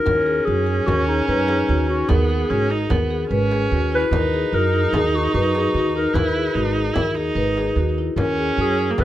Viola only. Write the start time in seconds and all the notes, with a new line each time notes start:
0.06 C#4
2.08 B3
2.50 C#4
2.70 D#4
2.90 B3
3.30 C#4
4.13 D#4
6.14 E4
6.54 D#4
6.93 E4
7.15 D#4
8.18 C#4
8.91 A#3
8.98 B3